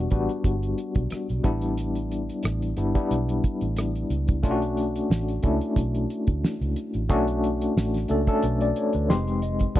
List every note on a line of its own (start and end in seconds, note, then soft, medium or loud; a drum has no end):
0.00 0.11 G3 loud
0.00 0.12 B3 medium
0.00 0.12 D4 medium
0.00 0.13 F#4 loud
0.10 0.27 A1 medium
0.10 1.08 G3 medium
0.10 1.08 B3 medium
0.10 1.09 D4 medium
0.10 1.09 F#4 medium
0.10 kick medium
0.10 closed hi-hat medium
0.29 closed hi-hat soft
0.44 0.73 G1 medium
0.44 kick medium
0.44 closed hi-hat medium
0.63 closed hi-hat soft
0.78 closed hi-hat medium
0.95 1.09 B1 medium
0.95 kick medium
0.95 closed hi-hat soft
1.10 muted fingered electric bass stroke soft
1.10 cross-stick medium
1.10 closed hi-hat medium
1.29 1.43 B1 medium
1.29 closed hi-hat soft
1.44 2.28 A1 medium
1.44 2.51 G3 medium
1.44 2.51 B3 medium
1.44 2.52 D4 medium
1.44 2.52 E4 medium
1.44 kick medium
1.44 closed hi-hat medium
1.61 closed hi-hat soft
1.77 closed hi-hat medium
1.95 closed hi-hat soft
2.11 closed hi-hat medium
2.29 closed hi-hat medium
2.43 2.72 A1 medium
2.43 cross-stick medium
2.43 closed hi-hat medium
2.62 closed hi-hat soft
2.77 2.93 G1 medium
2.77 2.90 G3 medium
2.77 2.90 B3 medium
2.77 2.91 D4 medium
2.77 2.91 E4 medium
2.77 closed hi-hat medium
2.95 3.91 G3 medium
2.95 3.92 B3 medium
2.95 3.92 D4 medium
2.95 3.92 E4 medium
2.95 kick medium
2.95 closed hi-hat soft
3.11 3.39 B1 medium
3.11 closed hi-hat medium
3.29 closed hi-hat soft
3.44 kick medium
3.44 closed hi-hat medium
3.61 4.03 A1 medium
3.61 closed hi-hat soft
3.76 cross-stick medium
3.76 closed hi-hat medium
3.95 closed hi-hat soft
4.10 4.44 C#2 medium
4.10 closed hi-hat medium
4.28 kick medium
4.28 closed hi-hat soft
4.43 5.00 B1 loud
4.43 5.16 A3 loud
4.43 5.17 C#4 loud
4.43 5.17 D4 medium
4.43 4.51 F4 medium
4.43 kick loud
4.43 closed hi-hat medium
4.51 5.20 F#4 loud
4.62 closed hi-hat soft
4.77 closed hi-hat medium
4.95 closed hi-hat medium
5.10 5.38 A1 medium
5.10 snare medium
5.28 closed hi-hat soft
5.43 5.59 C#2 medium
5.43 6.40 A3 medium
5.43 6.40 C#4 medium
5.43 6.41 D4 medium
5.43 6.41 E4 medium
5.43 kick medium
5.43 closed hi-hat medium
5.61 closed hi-hat soft
5.76 6.05 B1 medium
5.76 kick medium
5.76 closed hi-hat medium
5.95 closed hi-hat soft
6.10 closed hi-hat medium
6.27 6.41 D2 medium
6.27 kick medium
6.27 closed hi-hat soft
6.43 muted fingered electric bass stroke soft
6.43 snare medium
6.61 6.74 C#2 medium
6.61 closed hi-hat soft
6.76 closed hi-hat medium
6.94 7.10 A1 medium
6.94 closed hi-hat soft
7.09 7.66 B1 loud
7.09 7.82 A3 loud
7.09 7.83 C#4 medium
7.09 7.83 D4 medium
7.09 7.83 F#4 loud
7.09 kick loud
7.09 closed hi-hat medium
7.27 closed hi-hat soft
7.44 closed hi-hat medium
7.61 closed hi-hat medium
7.77 8.04 A1 medium
7.77 snare medium
7.94 snare soft
7.94 closed hi-hat soft
8.08 8.25 C#2 medium
8.08 8.22 A3 medium
8.08 8.22 C#4 medium
8.08 8.23 D4 medium
8.08 8.23 A4 medium
8.08 closed hi-hat medium
8.27 9.09 A3 medium
8.27 9.09 C#4 medium
8.27 9.10 D4 medium
8.27 9.10 A4 medium
8.27 kick medium
8.27 closed hi-hat soft
8.43 8.71 B1 medium
8.43 8.60 B4 medium
8.43 closed hi-hat medium
8.61 8.76 D5 medium
8.61 closed hi-hat soft
8.76 8.94 C#5 medium
8.76 closed hi-hat medium
8.93 9.07 D2 medium
8.93 9.26 B4 medium
8.93 closed hi-hat soft
9.09 9.66 F1 medium
9.09 9.63 G#3 medium
9.09 9.64 C4 medium
9.09 9.64 D#4 medium
9.09 9.64 G4 medium
9.09 9.41 C6 medium
9.09 snare medium
9.27 closed hi-hat soft
9.42 9.73 D#5 medium
9.42 closed hi-hat medium
9.59 kick medium
9.59 closed hi-hat soft
9.75 9.80 E2 medium
9.75 9.80 G3 loud
9.75 9.80 B3 loud
9.75 9.80 D4 loud
9.75 kick loud
9.75 closed hi-hat medium